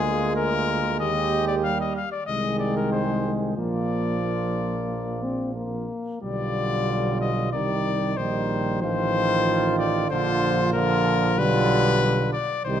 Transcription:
Already playing: D2 G#3 A#3 F4 G#4
0.35 A#4
0.99 D#2 G4 D#5
1.48 D5
1.63 G3 F5
1.80 D#5
1.96 F5
2.12 D5
2.26 C2 D#3 G#3 G#4 D#5
2.59 D5
2.77 A#4
2.92 C5
3.57 A#1 F3 A#3 F4 D5
4.23 A#3
5.23 C4
5.55 A#3
6.22 B1 D3 G3 F4 D5
7.21 D#5
7.52 C2 D#3 G3 D#4 D5
8.17 A#1 D#3 G3 D#4 C5
8.82 A1 D#3 F3 F4 C5
9.78 D5
10.10 A#1 D3 F3 F4 C5
10.73 D3 F3 F4 A#4
11.37 B1 D3 G3 F4 B4
12.33 D5
12.65 C2 D#3 G3 D#4 C5

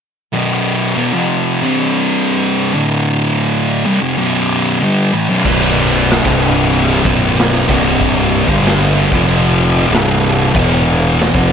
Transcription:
0.33 B1 F#2 B2
0.97 E2 B2
1.13 F2 C3 F3
1.62 C2 G2 C3
2.74 D2 A2 D3
3.86 C2 G2
4.01 F2 C3
4.17 B1 F#2 B2
4.81 G2 D3 G3
5.13 A2 E3
5.29 B1 F#2
5.45 B0 B1 F#2 B2, kick, crash
6.09 snare, crash
6.25 C1 C2 G2 C3, kick
6.73 crash
7.05 B0 B1 F#2 B2, kick
7.37 snare, crash
7.68 C1 C2 G2 C3, kick
8.01 kick, crash
8.48 G1 G2 D3 G3, kick
8.64 snare, crash
9.12 F1 F2 C3 F3, kick, snare
9.28 crash
9.91 C1 C2 G2 C3, snare, crash
10.54 E1 E2 B2 E3, kick, crash
11.19 snare, crash
11.35 F1 F2 C3 F3, kick

